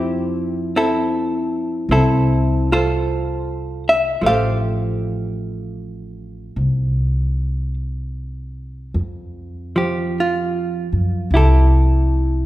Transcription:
Already playing: upright bass F2, hollow-body jazz guitar F3 C4 E4 G4
0.76 hollow-body jazz guitar C4 E4 A4
1.89 upright bass C2, hollow-body jazz guitar C4 E4 A4
2.72 hollow-body jazz guitar F4 A4 C5
3.89 hollow-body jazz guitar E5
4.21 upright bass A1, hollow-body jazz guitar F3 A3
4.26 hollow-body jazz guitar G4 A4 C5 F5
6.56 upright bass C2
8.94 upright bass F2
9.76 hollow-body jazz guitar F3 G4
10.20 hollow-body jazz guitar F4
10.92 upright bass F#2
11.31 upright bass C2, hollow-body jazz guitar E4
11.35 hollow-body jazz guitar G4 A4

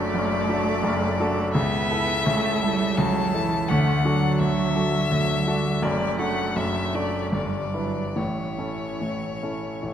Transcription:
Already playing: grand piano F#1 F#2 D4 F#4 A4, cello A3, violin D5
0.14 grand piano F#1 F#2
0.49 grand piano D4 F#4 A4
0.83 grand piano F#1 F#2
1.20 grand piano D4 F#4 A4
1.54 grand piano C#2 C#3, cello B3, violin E5
1.91 grand piano E4 A4
2.25 grand piano C#2 C#3, cello A3
2.62 cello G3, grand piano E4 A4
2.97 grand piano C#2 C#3, cello F#3, violin A5
3.34 cello E3, grand piano E4 A4
3.69 grand piano D2 D3, cello A3, violin F#5
4.04 cello F#3, grand piano D4 F#4 A4
4.39 grand piano D2 D3, violin E5
4.75 grand piano D4 F#4 A4
5.10 grand piano D2 D3, cello F#3
5.46 cello G3, grand piano D4 F#4 A4
5.82 grand piano F#1 F#2, cello A3, violin D5
6.19 grand piano D4 F#4 A4, violin F#5
6.56 grand piano F#1 F#2, cello A3, violin E5
6.94 grand piano D4 F#4 A4, violin D5
7.32 grand piano G1 G2, cello G3, violin D5
7.74 cello F#3, grand piano D4 E4 B4
8.16 grand piano A1 A2, cello E3, violin C#5
8.58 grand piano C#4 E4 A4
9.01 grand piano A1 A2
9.43 grand piano C#4 E4 A4
9.83 grand piano A1 A2

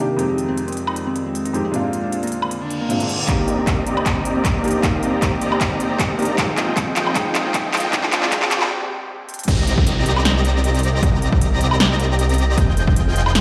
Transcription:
Already playing: ambient pad D#3 C4 A#4 D5
0.00 felt piano C3 A#3 D4 D#4 G4
0.17 felt piano F2 G#3 C4 D#4 G4, ambient pad G#3 F4, closed hi-hat
0.29 harp D#4
0.38 closed hi-hat
0.48 harp C4
0.57 closed hi-hat
0.68 harp C4, closed hi-hat
0.72 closed hi-hat
0.77 closed hi-hat
0.87 harp D#4, high woodblock
0.96 closed hi-hat
1.07 harp C4
1.16 closed hi-hat
1.26 harp C4
1.35 closed hi-hat
1.45 harp D#4, closed hi-hat
1.53 felt piano F2 G#3 C4 D#4 G4, closed hi-hat
1.65 harp C4
1.72 felt piano A#2 G#3 C4 D4, ambient pad D3 A#3 G#4, closed hi-hat
1.76 felt piano F4
1.84 harp A#3
1.93 closed hi-hat
2.03 harp D4
2.12 closed hi-hat
2.23 harp A#3, closed hi-hat
2.27 closed hi-hat
2.32 closed hi-hat
2.42 harp A#3, high woodblock
2.51 closed hi-hat, reverse cymbal
2.61 harp D4
2.71 closed hi-hat
2.81 harp A#3
2.89 felt piano A#2 G#3 C4 D4 F4, closed hi-hat
2.99 felt piano A#2 G#3 C4 D4 F4, harp A#3, closed hi-hat
3.09 closed hi-hat
3.19 harp D4
3.26 detuned saw bass C2, felt piano A#3 D#4, ambient pad A#3, supersaw synth C4 G4 D5 D#5 A#5, kick, clap, closed hi-hat, riser
3.30 felt piano G4
3.39 harp A#3
3.48 closed hi-hat
3.58 harp C4
3.67 kick, clap, closed hi-hat
3.78 harp A#3
3.86 detuned saw bass C2, supersaw synth C4 G4 D5 D#5 A#5, closed hi-hat
3.97 harp A#3, high woodblock
4.06 kick, clap, closed hi-hat
4.17 harp C4
4.25 closed hi-hat
4.36 harp A#3
4.45 kick, clap, closed hi-hat
4.55 harp A#3
4.63 felt piano A#3 D4 D#4 G4, closed hi-hat
4.68 closed hi-hat
4.71 harp C4, closed hi-hat
4.81 detuned saw bass C2, felt piano A#3 D#4, supersaw synth C4 G4 D5 D#5 A#5, kick, clap, closed hi-hat
4.85 felt piano G4
4.94 harp A#3
5.03 closed hi-hat
5.13 harp A#3
5.22 kick, clap, closed hi-hat
5.32 harp C4
5.41 detuned saw bass C2, supersaw synth C4 G4 D5 D#5 A#5, closed hi-hat
5.52 harp A#3, high woodblock
5.61 kick, clap, closed hi-hat
5.71 harp A#3
5.80 closed hi-hat
5.91 harp C4
5.99 kick, clap, closed hi-hat
6.10 harp A#3
6.18 felt piano A#3 D4 D#4 G4, closed hi-hat
6.22 closed hi-hat
6.25 harp A#3, closed hi-hat
6.36 detuned saw bass F1, ambient pad D#3 G#3 F4, supersaw synth F3 F4 G#4 D#5 G5, felt piano G#3 C4 D#4 G5, kick, clap, closed hi-hat
6.49 harp D#4
6.57 clap, closed hi-hat
6.68 harp C4
6.77 kick, clap, closed hi-hat
6.87 harp C4
6.96 detuned saw bass F1, supersaw synth F3 F4 G#4 D#5 G5, clap, closed hi-hat
7.07 harp D#4, high woodblock
7.14 detuned saw bass F1, supersaw synth F3 F4 G#4 D#5 G5, felt piano G#3 C4 D#4 G5, kick, clap, closed hi-hat
7.26 harp D#4
7.35 clap, closed hi-hat
7.45 harp C4
7.54 kick, clap, closed hi-hat
7.65 harp C4
7.74 detuned saw bass F1, supersaw synth F3 F4 G#4 D#5 G5, clap, closed hi-hat
7.77 closed hi-hat
7.80 closed hi-hat
7.84 harp D#4
7.91 detuned saw bass A#1, ambient pad D3 G#3 A#3, supersaw synth F3 F4 G#4 D5 G5, felt piano G#3 C4 D4, kick, clap, closed hi-hat
7.95 felt piano G5
8.03 harp D4, clap
8.12 clap, closed hi-hat
8.23 harp C4, clap
8.30 detuned saw bass A#1, supersaw synth F3 F4 G#4 D5 G5, felt piano G#3 C4 D4 G5, kick, clap, closed hi-hat
8.42 clap
8.51 clap, closed hi-hat
8.62 harp C4, clap, high woodblock
9.29 closed hi-hat
9.34 closed hi-hat
9.39 closed hi-hat
9.44 closed hi-hat
9.48 detuned saw bass C2, supersaw synth C4 G4 D5 D#5 A#5, digital synth lead A#6, kick, closed hi-hat, crash, downlifter
9.67 closed hi-hat
9.78 kick
9.87 closed hi-hat
10.06 detuned saw bass C2, supersaw synth C4 G4 D5 D#5 A#5, digital synth lead A#6, closed hi-hat
10.16 high woodblock
10.25 snare, closed hi-hat
10.45 closed hi-hat
10.64 closed hi-hat
10.75 closed hi-hat
10.79 closed hi-hat
10.83 closed hi-hat
11.03 detuned saw bass C2, supersaw synth C4 G4 D5 D#5 A#5, digital synth lead A#6, kick, closed hi-hat
11.22 closed hi-hat
11.32 kick
11.41 closed hi-hat
11.61 detuned saw bass C2, supersaw synth C4 G4 D5 D#5 A#5, digital synth lead A#6, closed hi-hat
11.71 high woodblock
11.80 snare, closed hi-hat
12.00 closed hi-hat
12.19 closed hi-hat
12.29 closed hi-hat
12.34 closed hi-hat
12.38 closed hi-hat
12.58 detuned saw bass F1, supersaw synth F3 F4 G#4 D#5 G5, digital synth lead G6, kick, closed hi-hat
12.77 closed hi-hat
12.87 kick
12.96 closed hi-hat
13.16 detuned saw bass F1, supersaw synth F3 F4 G#4 D#5 G5, digital synth lead G6, closed hi-hat
13.26 high woodblock
13.35 snare, closed hi-hat

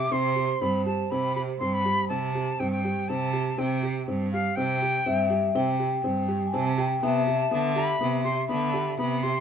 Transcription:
Already playing: flute D6
0.11 cello C3, felt piano C4, vibraphone C5, flute C6
0.36 felt piano G4
0.61 cello G2, felt piano C4, flute B5
0.86 felt piano G4, flute A5
1.11 cello C3, felt piano C4, flute B5
1.36 felt piano G4, flute B5
1.59 cello G2, felt piano C4, flute C6
1.74 flute B5
1.85 felt piano G4
2.09 cello C3, felt piano C4, flute A5
2.35 felt piano G4
2.60 cello G2, felt piano C4, flute G5
2.71 flute G5
2.85 felt piano G4
3.08 cello C3, felt piano C4, flute A5
3.33 felt piano G4
3.58 cello C3, felt piano C4, flute G5
3.83 felt piano G4
4.08 cello G2, felt piano C4
4.32 felt piano G4, flute F5
4.56 cello C3, felt piano C4, flute G5
4.82 felt piano G4
5.06 cello G2, felt piano C4, vibraphone E5
5.30 felt piano G4
5.55 cello C3, felt piano C4, vibraphone G5
5.80 felt piano G4
6.04 cello G2, felt piano C4
6.28 felt piano G4
6.47 vibraphone G#5
6.54 cello C3, felt piano C4, vibraphone A5
6.78 felt piano G4, vibraphone G5
7.03 cello C3, felt piano B3, vibraphone E5, flute A5
7.27 felt piano G4
7.51 cello D3, felt piano B3
7.75 felt piano G4, flute B5
8.01 cello C3, felt piano B3
8.24 felt piano G4, flute C6
8.48 cello D3, felt piano B3, flute B5
8.74 felt piano G4
8.97 cello C3, felt piano B3, flute B5
9.23 felt piano G4, flute C6

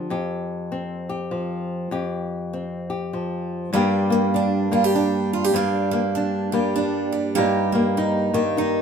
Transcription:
Already playing: nylon-string guitar F3 G4
0.10 nylon-string guitar F2 G4
0.72 nylon-string guitar C4
1.09 nylon-string guitar G4
1.31 nylon-string guitar F3
1.91 nylon-string guitar F2 G4
2.53 nylon-string guitar C4
2.90 nylon-string guitar G4
3.13 nylon-string guitar F3
3.73 nylon-string guitar G2 G3 A#3 D4 G4
4.10 nylon-string guitar A#3
4.34 nylon-string guitar D4
4.71 nylon-string guitar G3 A#3, steel-string acoustic guitar F4
4.84 steel-string acoustic guitar G4
4.95 nylon-string guitar D4
5.33 steel-string acoustic guitar F4
5.44 steel-string acoustic guitar G4
5.54 nylon-string guitar G2 D4, steel-string acoustic guitar A#3 G4
5.93 nylon-string guitar A#3
6.17 nylon-string guitar D4
6.52 nylon-string guitar G3 A#3, steel-string acoustic guitar G4
6.78 nylon-string guitar D4
7.12 steel-string acoustic guitar G4
7.35 nylon-string guitar G2 D#4, steel-string acoustic guitar A#3 G4
7.75 nylon-string guitar A#3
7.98 nylon-string guitar D#4
8.34 nylon-string guitar D#3 A#3, steel-string acoustic guitar G4
8.57 nylon-string guitar D#4

